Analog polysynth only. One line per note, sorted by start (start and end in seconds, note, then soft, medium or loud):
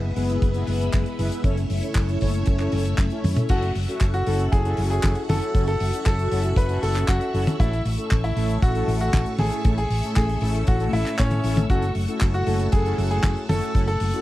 0.00 0.13 B3 medium
0.00 0.13 E4 medium
0.00 0.13 G#4 medium
0.00 0.13 B4 medium
0.16 0.51 B3 loud
0.16 0.51 E4 medium
0.16 0.51 G#4 medium
0.16 0.51 B4 loud
0.54 0.90 B3 loud
0.54 0.90 E4 medium
0.54 0.90 G#4 medium
0.54 0.90 B4 loud
0.93 1.16 B3 medium
0.93 1.16 E4 medium
0.93 1.16 G#4 medium
0.93 1.16 B4 medium
1.19 1.41 B3 loud
1.19 1.41 E4 medium
1.19 1.41 G#4 medium
1.19 1.41 B4 loud
1.44 1.58 C#4 medium
1.44 1.58 E4 medium
1.44 1.58 A4 medium
1.44 1.58 C#5 loud
1.83 2.18 C#4 medium
1.83 2.18 E4 medium
1.83 2.18 A4 medium
1.83 2.18 C#5 medium
2.21 2.57 C#4 loud
2.21 2.57 E4 medium
2.21 2.57 A4 medium
2.21 2.57 C#5 loud
2.60 2.95 C#4 loud
2.60 2.95 E4 medium
2.60 2.95 A4 medium
2.60 2.95 C#5 loud
3.11 3.46 C#4 medium
3.11 3.46 E4 medium
3.11 3.46 A4 medium
3.11 3.46 C#5 medium
3.49 3.63 C#4 medium
3.49 3.63 E4 medium
3.49 3.63 F#4 medium
3.49 3.63 A4 loud
3.88 4.23 C#4 medium
3.88 4.23 E4 medium
3.88 4.23 F#4 medium
3.88 4.23 A4 medium
4.26 4.62 C#4 loud
4.26 4.62 E4 medium
4.26 4.62 F#4 medium
4.26 4.62 A4 loud
4.65 5.00 C#4 loud
4.65 5.00 E4 medium
4.65 5.00 F#4 medium
4.65 5.00 A4 loud
5.03 5.26 C#4 medium
5.03 5.26 E4 medium
5.03 5.26 F#4 medium
5.03 5.26 A4 medium
5.29 5.52 C#4 loud
5.29 5.52 E4 medium
5.29 5.51 F#4 medium
5.29 5.51 A4 loud
5.55 5.68 C#4 loud
5.55 5.68 E4 medium
5.55 5.68 F#4 medium
5.55 5.68 A4 loud
5.93 6.28 C#4 medium
5.93 6.28 E4 medium
5.93 6.28 F#4 medium
5.93 6.28 A4 medium
6.31 6.67 C#4 medium
6.31 6.67 E4 medium
6.31 6.67 F#4 medium
6.31 6.67 A4 loud
6.70 7.05 C#4 loud
6.70 7.05 E4 medium
6.70 7.05 F#4 medium
6.70 7.05 A4 loud
7.09 7.31 C#4 medium
7.09 7.31 E4 medium
7.09 7.31 F#4 medium
7.09 7.31 A4 medium
7.34 7.57 C#4 loud
7.34 7.57 E4 medium
7.34 7.57 F#4 medium
7.34 7.57 A4 loud
7.60 7.74 A3 medium
7.60 7.74 C#4 medium
7.60 7.73 E4 medium
7.60 7.74 A4 loud
7.98 8.34 A3 medium
7.98 8.34 C#4 medium
7.98 8.34 E4 medium
7.98 8.34 A4 medium
8.37 8.72 A3 loud
8.37 8.72 C#4 medium
8.37 8.72 E4 medium
8.37 8.72 A4 loud
8.75 9.10 A3 loud
8.75 9.10 C#4 medium
8.75 9.10 E4 medium
8.75 9.10 A4 loud
9.14 9.36 A3 medium
9.14 9.36 C#4 medium
9.14 9.36 E4 medium
9.14 9.36 A4 medium
9.39 9.62 A3 loud
9.39 9.62 C#4 medium
9.39 9.62 E4 medium
9.39 9.62 A4 loud
9.65 9.79 A3 loud
9.65 9.79 C#4 medium
9.65 9.79 E4 medium
9.65 9.79 A4 loud
10.03 10.39 A3 medium
10.03 10.39 C#4 medium
10.03 10.39 E4 medium
10.03 10.39 A4 medium
10.42 10.77 A3 loud
10.42 10.77 C#4 medium
10.42 10.77 E4 medium
10.42 10.77 A4 loud
10.80 11.16 A3 loud
10.80 11.16 C#4 medium
10.80 11.16 E4 medium
10.80 11.16 A4 loud
11.18 11.41 A3 medium
11.18 11.41 C#4 medium
11.18 11.41 E4 medium
11.18 11.41 A4 medium
11.44 11.67 A3 loud
11.44 11.67 C#4 medium
11.44 11.67 E4 medium
11.44 11.67 A4 loud
11.70 11.84 C#4 loud
11.70 11.84 E4 medium
11.70 11.84 F#4 medium
11.70 11.84 A4 loud
12.08 12.44 C#4 medium
12.08 12.44 E4 medium
12.08 12.44 F#4 medium
12.08 12.44 A4 medium
12.47 12.82 C#4 loud
12.47 12.82 E4 medium
12.47 12.82 F#4 medium
12.47 12.82 A4 loud
12.85 13.21 C#4 loud
12.85 13.21 E4 medium
12.85 13.21 F#4 medium
12.85 13.21 A4 loud
13.24 13.46 C#4 medium
13.24 13.46 E4 medium
13.24 13.46 F#4 medium
13.24 13.46 A4 medium
13.49 13.72 C#4 loud
13.49 13.72 E4 medium
13.49 13.72 F#4 medium
13.49 13.72 A4 loud
13.75 13.89 C#4 medium
13.75 13.89 E4 medium
13.75 13.89 F#4 medium
13.75 13.89 A4 loud
14.13 14.21 C#4 medium
14.13 14.21 E4 medium
14.13 14.21 F#4 medium
14.13 14.21 A4 medium